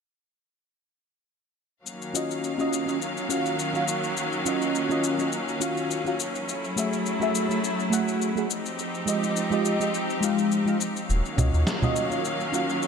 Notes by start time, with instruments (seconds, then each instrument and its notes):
1.84 string section D#3 F#3 A#3 C#4 F5, shaker
2.02 shaker
2.14 fm electric piano C#4 F4 F#4 D#5, shaker
2.31 shaker
2.44 shaker
2.58 fm electric piano C#4 F4 F#4 D#5, shaker
2.73 shaker
2.86 fm electric piano C#4 F4 F#4 D#5, shaker
3.02 shaker
3.17 shaker
3.29 fm electric piano C#4 F4 F#4 F5, shaker
3.46 shaker
3.59 shaker
3.73 fm electric piano C#4 F4 F#4 F5, shaker
3.88 shaker
4.04 shaker
4.17 shaker
4.33 shaker
4.45 fm electric piano C#4 F4 F#4 D#5, shaker
4.62 shaker
4.75 shaker
4.89 fm electric piano C#4 F4 F#4 D#5, shaker
5.04 shaker
5.18 fm electric piano C#4 F4 F#4 D#5, shaker
5.32 shaker
5.48 shaker
5.60 fm electric piano C#4 F4 F#4 F5, shaker
5.77 shaker
5.91 shaker
6.05 fm electric piano C#4 F4 F#4 F5, shaker
6.20 shaker
6.35 shaker
6.48 string section F#3 A3 E4, shaker
6.64 shaker
6.76 fm electric piano A3 F#4 G#4 E5, shaker
6.93 shaker
7.06 shaker
7.20 fm electric piano A3 F#4 G#4 E5, shaker
7.35 shaker
7.49 fm electric piano A3 F#4 G#4 E5, shaker
7.64 shaker
7.80 shaker
7.90 fm electric piano A3 F#4 G#4 F#5, shaker
8.08 shaker
8.22 shaker
8.36 fm electric piano A3 F#4 G#4 F#5, shaker
8.50 string section F3 C4 D#4 G4, shaker
8.66 shaker
8.79 shaker
8.95 shaker
9.06 fm electric piano G#3 F4 G4 D#5, shaker
9.23 shaker
9.36 shaker
9.50 fm electric piano G#3 F4 G4 D#5, shaker
9.65 shaker
9.80 fm electric piano G#3 F4 G4 D#5, shaker
9.94 shaker
10.10 shaker
10.21 fm electric piano G#3 F4 G4 F5, shaker
10.38 shaker
10.51 shaker
10.65 fm electric piano G#3 F4 G4 F5, shaker
10.81 shaker
10.96 shaker
11.08 analog synth bass D#1, string section D#3 F#3 A#3 C#4 F5, shaker
11.25 shaker
11.36 analog synth bass C#2, fm electric piano C#4 F4 F#4 D#5, low conga, shaker
11.54 analog synth bass D#2, shaker
11.67 snare, shaker
11.81 fm electric piano C#4 F4 F#4 D#5, low conga, shaker
11.96 shaker
12.10 fm electric piano C#4 F4 F#4 D#5, shaker
12.25 shaker
12.40 shaker
12.52 fm electric piano C#4 F4 F#4 F5, shaker
12.69 shaker
12.82 shaker